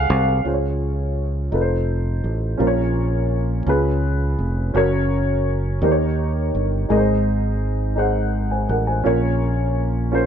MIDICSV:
0, 0, Header, 1, 3, 480
1, 0, Start_track
1, 0, Key_signature, -5, "major"
1, 0, Tempo, 716846
1, 308, Time_signature, 6, 3, 24, 8
1, 6871, End_track
2, 0, Start_track
2, 0, Title_t, "Upright piano"
2, 0, Program_c, 0, 0
2, 0, Control_c, 0, 64, 127
2, 0, Note_on_c, 0, 53, 52
2, 0, Note_on_c, 0, 56, 51
2, 0, Note_on_c, 0, 61, 58
2, 0, Note_on_c, 0, 77, 105
2, 0, Note_on_c, 0, 78, 98
2, 0, Note_on_c, 0, 80, 102
2, 287, Note_off_c, 0, 77, 0
2, 297, Note_off_c, 0, 61, 0
2, 297, Note_on_c, 0, 61, 52
2, 306, Note_on_c, 0, 65, 48
2, 310, Note_on_c, 0, 49, 41
2, 311, Note_on_c, 0, 68, 45
2, 316, Control_c, 0, 64, 0
2, 318, Note_off_c, 0, 56, 0
2, 318, Note_off_c, 0, 78, 0
2, 318, Note_on_c, 0, 72, 44
2, 320, Note_off_c, 0, 80, 0
2, 322, Note_off_c, 0, 53, 0
2, 356, Note_off_c, 0, 72, 0
2, 361, Note_on_c, 0, 73, 50
2, 420, Control_c, 0, 64, 127
2, 806, Note_off_c, 0, 61, 0
2, 810, Note_off_c, 0, 65, 0
2, 813, Note_off_c, 0, 68, 0
2, 838, Note_off_c, 0, 73, 0
2, 999, Note_off_c, 0, 49, 0
2, 1015, Note_on_c, 0, 63, 49
2, 1021, Note_on_c, 0, 65, 44
2, 1028, Note_on_c, 0, 69, 47
2, 1034, Control_c, 0, 64, 0
2, 1036, Note_on_c, 0, 71, 45
2, 1074, Note_off_c, 0, 71, 0
2, 1079, Note_on_c, 0, 72, 57
2, 1158, Control_c, 0, 64, 127
2, 1524, Note_off_c, 0, 63, 0
2, 1527, Note_off_c, 0, 65, 0
2, 1531, Note_off_c, 0, 69, 0
2, 1556, Note_off_c, 0, 72, 0
2, 1724, Note_on_c, 0, 61, 60
2, 1734, Note_on_c, 0, 46, 50
2, 1734, Note_on_c, 0, 65, 56
2, 1740, Note_on_c, 0, 70, 57
2, 1744, Note_on_c, 0, 72, 47
2, 1751, Control_c, 0, 64, 0
2, 1787, Note_off_c, 0, 72, 0
2, 1789, Note_on_c, 0, 73, 67
2, 1867, Control_c, 0, 64, 127
2, 2239, Note_off_c, 0, 61, 0
2, 2244, Note_off_c, 0, 65, 0
2, 2247, Note_off_c, 0, 70, 0
2, 2271, Note_off_c, 0, 73, 0
2, 2432, Note_off_c, 0, 46, 0
2, 2453, Note_on_c, 0, 61, 55
2, 2461, Note_on_c, 0, 65, 53
2, 2463, Note_on_c, 0, 49, 47
2, 2469, Note_on_c, 0, 68, 55
2, 2472, Control_c, 0, 64, 0
2, 2473, Note_on_c, 0, 71, 64
2, 2582, Control_c, 0, 64, 127
2, 2963, Note_off_c, 0, 61, 0
2, 2967, Note_off_c, 0, 65, 0
2, 2971, Note_off_c, 0, 68, 0
2, 2973, Note_off_c, 0, 71, 0
2, 3156, Note_off_c, 0, 49, 0
2, 3172, Note_on_c, 0, 61, 67
2, 3182, Note_on_c, 0, 66, 57
2, 3186, Note_on_c, 0, 70, 62
2, 3193, Control_c, 0, 64, 0
2, 3193, Note_on_c, 0, 73, 78
2, 3318, Control_c, 0, 64, 127
2, 3683, Note_off_c, 0, 61, 0
2, 3688, Note_off_c, 0, 66, 0
2, 3690, Note_off_c, 0, 70, 0
2, 3693, Note_off_c, 0, 73, 0
2, 3896, Note_on_c, 0, 63, 56
2, 3902, Note_on_c, 0, 67, 52
2, 3907, Note_on_c, 0, 51, 50
2, 3910, Note_on_c, 0, 70, 56
2, 3911, Control_c, 0, 64, 0
2, 3916, Note_on_c, 0, 72, 49
2, 3953, Note_off_c, 0, 72, 0
2, 3960, Note_on_c, 0, 73, 61
2, 4050, Control_c, 0, 64, 127
2, 4406, Note_off_c, 0, 63, 0
2, 4408, Note_off_c, 0, 67, 0
2, 4412, Note_off_c, 0, 70, 0
2, 4438, Note_off_c, 0, 73, 0
2, 4599, Note_off_c, 0, 51, 0
2, 4610, Note_on_c, 0, 63, 59
2, 4618, Note_on_c, 0, 68, 61
2, 4619, Note_on_c, 0, 44, 57
2, 4623, Note_on_c, 0, 70, 49
2, 4632, Control_c, 0, 64, 0
2, 4632, Note_on_c, 0, 75, 72
2, 4667, Note_on_c, 0, 72, 58
2, 4668, Note_off_c, 0, 70, 0
2, 4762, Control_c, 0, 64, 127
2, 5123, Note_off_c, 0, 63, 0
2, 5127, Note_off_c, 0, 68, 0
2, 5134, Note_off_c, 0, 75, 0
2, 5151, Note_off_c, 0, 72, 0
2, 5316, Note_off_c, 0, 44, 0
2, 5326, Note_on_c, 0, 63, 57
2, 5335, Note_on_c, 0, 68, 46
2, 5341, Note_on_c, 0, 72, 50
2, 5350, Note_on_c, 0, 78, 60
2, 5583, Note_off_c, 0, 72, 0
2, 5588, Note_off_c, 0, 78, 0
2, 5700, Note_on_c, 0, 80, 38
2, 5705, Note_on_c, 0, 72, 36
2, 5817, Note_off_c, 0, 80, 0
2, 5819, Note_off_c, 0, 72, 0
2, 5822, Note_on_c, 0, 78, 46
2, 5828, Note_on_c, 0, 70, 43
2, 5842, Note_off_c, 0, 63, 0
2, 5846, Note_off_c, 0, 68, 0
2, 5938, Note_off_c, 0, 78, 0
2, 5940, Note_on_c, 0, 80, 47
2, 5941, Note_off_c, 0, 70, 0
2, 5945, Note_on_c, 0, 72, 34
2, 6050, Note_on_c, 0, 61, 63
2, 6058, Note_on_c, 0, 65, 58
2, 6063, Note_on_c, 0, 70, 57
2, 6064, Note_on_c, 0, 46, 52
2, 6071, Note_on_c, 0, 73, 73
2, 6073, Control_c, 0, 64, 0
2, 6171, Note_off_c, 0, 80, 0
2, 6174, Note_off_c, 0, 72, 0
2, 6187, Control_c, 0, 64, 127
2, 6564, Note_off_c, 0, 61, 0
2, 6568, Note_off_c, 0, 65, 0
2, 6571, Note_off_c, 0, 70, 0
2, 6574, Note_off_c, 0, 73, 0
2, 6759, Note_off_c, 0, 46, 0
2, 6774, Note_on_c, 0, 61, 61
2, 6779, Note_on_c, 0, 65, 53
2, 6787, Note_on_c, 0, 70, 49
2, 6794, Note_on_c, 0, 72, 69
2, 6871, Note_off_c, 0, 61, 0
2, 6871, Note_off_c, 0, 65, 0
2, 6871, Note_off_c, 0, 70, 0
2, 6871, Note_off_c, 0, 72, 0
2, 6871, End_track
3, 0, Start_track
3, 0, Title_t, "Fingered electric bass"
3, 0, Program_c, 1, 33
3, 67, Note_on_c, 1, 36, 101
3, 288, Note_off_c, 1, 36, 0
3, 303, Note_on_c, 1, 37, 64
3, 996, Note_off_c, 1, 37, 0
3, 1018, Note_on_c, 1, 29, 72
3, 1474, Note_off_c, 1, 29, 0
3, 1501, Note_on_c, 1, 33, 59
3, 1723, Note_off_c, 1, 33, 0
3, 1741, Note_on_c, 1, 34, 69
3, 2435, Note_off_c, 1, 34, 0
3, 2454, Note_on_c, 1, 37, 84
3, 2912, Note_off_c, 1, 37, 0
3, 2937, Note_on_c, 1, 29, 66
3, 3161, Note_off_c, 1, 29, 0
3, 3178, Note_on_c, 1, 30, 72
3, 3874, Note_off_c, 1, 30, 0
3, 3895, Note_on_c, 1, 39, 82
3, 4353, Note_off_c, 1, 39, 0
3, 4384, Note_on_c, 1, 31, 67
3, 4605, Note_off_c, 1, 31, 0
3, 4620, Note_on_c, 1, 32, 74
3, 5797, Note_off_c, 1, 32, 0
3, 5820, Note_on_c, 1, 33, 65
3, 6044, Note_off_c, 1, 33, 0
3, 6067, Note_on_c, 1, 34, 71
3, 6871, Note_off_c, 1, 34, 0
3, 6871, End_track
0, 0, End_of_file